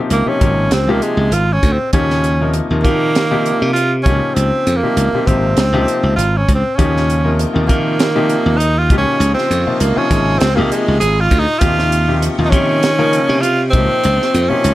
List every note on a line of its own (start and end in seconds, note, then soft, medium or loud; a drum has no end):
0.00 0.23 C3 medium
0.00 0.23 F3 medium
0.00 0.23 A#3 medium
0.00 0.23 D#4 medium
0.00 0.23 G4 medium
0.10 0.25 C#2 medium
0.10 0.30 A#3 medium
0.10 closed hi-hat medium
0.26 0.39 C3 medium
0.26 0.39 F3 medium
0.26 0.39 A#3 medium
0.26 0.75 C#4 medium
0.26 0.39 D#4 medium
0.26 0.39 G4 medium
0.26 muted slap bass stroke soft
0.41 0.68 G#1 medium
0.41 0.68 C3 medium
0.41 0.68 F3 medium
0.41 0.68 A#3 medium
0.41 0.68 D#4 medium
0.41 0.68 G4 medium
0.41 kick medium
0.41 closed hi-hat medium
0.71 0.85 C#2 medium
0.71 0.92 C4 medium
0.71 0.80 D#4 soft
0.71 0.80 A#4 soft
0.71 snare loud
0.71 closed hi-hat medium
0.87 0.99 C#2 medium
0.87 1.28 C3 medium
0.87 1.27 F3 medium
0.87 1.27 A#3 medium
0.87 1.04 A#3 medium
0.87 1.28 D#4 medium
0.87 1.28 G4 loud
1.02 1.35 G#3 medium
1.02 closed hi-hat medium
1.17 1.30 C#2 medium
1.31 1.58 G#1 medium
1.31 1.41 D#4 soft
1.31 1.55 F4 medium
1.31 1.40 A#4 soft
1.31 closed hi-hat medium
1.53 1.74 C#4 medium
1.63 1.77 D2 medium
1.63 kick medium
1.63 closed hi-hat medium
1.73 1.93 C4 medium
1.93 2.59 D#2 medium
1.93 2.34 C#3 medium
1.93 2.34 F3 medium
1.93 2.34 A#3 medium
1.93 2.54 C#4 medium
1.93 2.34 D#4 medium
1.93 2.34 G4 loud
1.93 kick loud
1.93 closed hi-hat medium
2.10 snare soft
2.24 closed hi-hat medium
2.41 2.67 C3 medium
2.41 2.67 F3 medium
2.41 2.67 A#3 medium
2.41 2.67 D#4 medium
2.41 2.67 A#4 medium
2.54 closed hi-hat medium
2.70 2.82 D#2 medium
2.70 2.83 C3 medium
2.70 2.83 F3 medium
2.70 2.83 A#3 medium
2.70 2.83 D#4 medium
2.70 2.83 A#4 medium
2.83 3.12 C3 medium
2.83 3.51 D#3 medium
2.83 3.11 F3 medium
2.83 3.71 A#3 medium
2.83 3.12 A#3 medium
2.83 3.12 D#4 medium
2.83 3.12 G4 medium
2.83 kick medium
2.83 closed hi-hat medium
3.15 3.23 D#4 soft
3.15 3.23 G4 soft
3.15 snare loud
3.15 closed hi-hat medium
3.31 3.70 C3 medium
3.31 3.70 F3 medium
3.31 3.70 A#3 medium
3.31 3.70 D#4 medium
3.31 3.70 G4 loud
3.46 closed hi-hat medium
3.62 4.07 C3 medium
3.73 3.83 D#4 soft
3.73 3.93 F4 medium
3.73 3.83 G4 soft
3.73 closed hi-hat medium
4.03 4.20 C#2 medium
4.03 4.73 C#3 medium
4.03 4.73 F3 medium
4.03 4.73 A#3 medium
4.03 4.36 C#4 medium
4.03 4.73 D#4 medium
4.03 4.73 G4 medium
4.03 kick medium
4.03 closed hi-hat medium
4.35 4.50 C#2 medium
4.35 4.77 C4 medium
4.35 closed hi-hat medium
4.67 4.80 F2 medium
4.67 closed hi-hat medium
4.76 5.28 A#3 medium
4.83 5.09 C3 medium
4.83 5.09 F3 medium
4.83 5.09 A#3 medium
4.83 5.09 D#4 medium
4.83 5.09 G4 medium
4.83 muted slap bass stroke soft
4.97 5.11 C#2 medium
4.97 closed hi-hat medium
5.13 5.26 C3 medium
5.13 5.26 F3 medium
5.13 5.26 A#3 medium
5.13 5.26 D#4 medium
5.13 5.26 G4 medium
5.13 muted slap bass stroke soft
5.26 5.53 G#1 medium
5.26 5.54 C3 medium
5.26 5.54 F3 medium
5.26 5.54 A#3 medium
5.26 6.16 C4 medium
5.26 5.54 D#4 medium
5.26 5.54 G4 medium
5.26 kick medium
5.26 closed hi-hat medium
5.57 5.71 C#2 medium
5.57 snare loud
5.57 closed hi-hat medium
5.72 5.85 C#2 medium
5.72 6.13 C3 medium
5.72 6.13 F3 medium
5.72 6.13 A#3 medium
5.72 6.13 D#4 medium
5.72 6.13 G4 loud
5.88 closed hi-hat medium
6.03 6.15 C#2 medium
6.16 6.43 G#1 medium
6.16 6.39 F4 medium
6.16 closed hi-hat medium
6.38 6.54 C#4 medium
6.48 6.62 C#2 medium
6.48 kick medium
6.48 closed hi-hat medium
6.55 6.78 C4 medium
6.76 7.45 D#2 medium
6.76 7.19 C#3 medium
6.76 7.19 F3 medium
6.76 7.19 A#3 medium
6.76 7.41 C#4 medium
6.76 7.19 D#4 medium
6.76 8.88 F4 medium
6.76 7.19 G4 medium
6.76 14.74 D#5 medium
6.76 8.88 G5 medium
6.76 14.74 C#6 medium
6.76 kick loud
6.76 closed hi-hat medium
6.97 snare soft
7.10 closed hi-hat medium
7.24 7.51 C3 medium
7.24 7.51 F3 medium
7.24 7.51 A#3 medium
7.24 7.51 D#4 medium
7.24 7.51 A#4 medium
7.39 closed hi-hat medium
7.53 7.67 D#2 medium
7.53 7.67 C3 medium
7.53 7.66 F3 medium
7.53 7.66 A#3 medium
7.53 7.67 D#4 medium
7.53 7.67 A#4 medium
7.67 7.95 C3 medium
7.67 8.35 D#3 medium
7.67 7.95 F3 medium
7.67 8.59 A#3 medium
7.67 7.96 A#3 medium
7.67 7.95 D#4 medium
7.67 7.96 A#4 medium
7.67 kick medium
7.67 closed hi-hat medium
7.99 8.08 D#4 soft
7.99 8.08 G4 soft
7.99 snare loud
7.99 closed hi-hat medium
8.16 8.55 C3 medium
8.16 8.55 F3 medium
8.16 8.55 A#3 medium
8.16 8.55 D#4 medium
8.16 8.55 G4 loud
8.30 closed hi-hat medium
8.46 8.90 D#2 medium
8.58 8.80 D#4 medium
8.58 8.68 D#4 soft
8.58 8.68 A#4 soft
8.58 closed hi-hat medium
8.79 8.97 F4 medium
8.90 9.04 C#2 medium
8.90 9.57 C#3 medium
8.90 9.57 F3 medium
8.90 9.57 A#3 medium
8.90 9.57 D#4 medium
8.90 13.69 F4 medium
8.90 9.57 G4 medium
8.90 11.59 C6 medium
8.90 kick loud
8.90 closed hi-hat medium
8.98 9.33 C#4 medium
9.20 9.34 C#2 loud
9.20 closed hi-hat medium
9.34 9.81 C4 medium
9.34 snare soft
9.50 9.64 F2 medium
9.50 closed hi-hat medium
9.66 9.93 C3 medium
9.66 9.93 F3 medium
9.66 9.93 A#3 medium
9.66 9.93 D#4 medium
9.66 9.93 F4 medium
9.66 muted slap bass stroke soft
9.80 9.95 C#2 medium
9.80 9.99 A#3 medium
9.80 closed hi-hat medium
9.96 10.08 C3 medium
9.96 10.09 F3 medium
9.96 10.08 A#3 medium
9.96 10.40 C#4 loud
9.96 10.09 D#4 medium
9.96 10.09 F4 medium
9.96 muted slap bass stroke soft
10.10 10.37 G#1 medium
10.10 10.37 C3 medium
10.10 10.37 F3 medium
10.10 10.37 A#3 medium
10.10 10.37 D#4 medium
10.10 10.38 G#4 medium
10.10 kick medium
10.10 closed hi-hat medium
10.39 10.55 C#2 medium
10.39 10.57 C4 loud
10.39 10.49 D#4 soft
10.39 10.49 A#4 soft
10.39 snare loud
10.39 closed hi-hat medium
10.55 10.70 C#2 medium
10.55 10.96 C3 medium
10.55 10.96 F3 medium
10.55 10.62 A#3 medium
10.55 10.96 A#3 medium
10.55 10.96 D#4 medium
10.55 10.96 G4 loud
10.61 10.64 G#3 medium
10.61 10.73 A#3 medium
10.71 11.00 G#3 medium
10.71 closed hi-hat medium
10.88 11.00 C#2 medium
11.00 11.27 G#1 medium
11.00 11.09 D#4 soft
11.00 11.10 G4 soft
11.00 11.22 G#4 loud
11.00 closed hi-hat medium
11.20 11.41 F4 loud
11.31 11.45 D2 medium
11.31 kick medium
11.31 closed hi-hat medium
11.39 11.60 D#4 loud
11.59 12.27 D#2 medium
11.59 12.02 C3 medium
11.59 12.02 F3 medium
11.59 12.02 A#3 medium
11.59 12.02 D#4 medium
11.59 12.24 F4 loud
11.59 12.02 G4 medium
11.59 13.71 G5 medium
11.59 kick loud
11.59 closed hi-hat medium
11.79 snare soft
11.92 closed hi-hat medium
12.08 12.34 C3 medium
12.08 12.34 F3 medium
12.08 12.35 A#3 medium
12.08 12.34 D#4 medium
12.08 12.35 G4 medium
12.22 closed hi-hat medium
12.38 12.50 D#2 medium
12.38 12.51 C3 medium
12.38 12.51 F3 medium
12.38 12.51 A#3 medium
12.38 12.51 D#4 medium
12.38 12.51 F4 medium
12.45 12.52 D#4 medium
12.50 12.79 C3 medium
12.50 13.18 D#3 medium
12.50 12.80 F3 medium
12.50 12.79 A#3 medium
12.50 13.43 C#4 loud
12.50 12.80 D#4 medium
12.50 12.80 G4 medium
12.50 kick medium
12.50 closed hi-hat medium
12.83 12.91 D#4 soft
12.83 12.91 A#4 soft
12.83 snare loud
12.83 closed hi-hat medium
12.98 13.38 C#3 medium
12.98 13.38 F3 medium
12.98 13.38 A#3 medium
12.98 13.38 D#4 medium
12.98 13.38 A#4 loud
13.13 closed hi-hat medium
13.29 13.75 C3 medium
13.41 13.52 D#4 soft
13.41 13.62 F4 loud
13.41 13.51 A#4 soft
13.41 closed hi-hat medium
13.71 13.87 C#2 medium
13.71 14.40 C3 medium
13.71 14.40 F3 medium
13.71 14.40 A#3 medium
13.71 14.51 C4 loud
13.71 14.40 D#4 medium
13.71 14.74 F4 medium
13.71 14.74 C6 medium
13.71 kick medium
13.71 closed hi-hat medium
13.75 14.40 G4 medium
14.04 14.18 C#2 loud
14.04 closed hi-hat medium
14.22 snare soft
14.34 14.48 F2 medium
14.34 closed hi-hat medium
14.49 14.74 C3 medium
14.49 14.74 F3 medium
14.49 14.74 A#3 medium
14.49 14.74 C#4 loud
14.49 14.74 D#4 medium
14.49 14.74 G4 medium
14.49 muted slap bass stroke soft
14.64 14.74 C#2 medium
14.64 closed hi-hat medium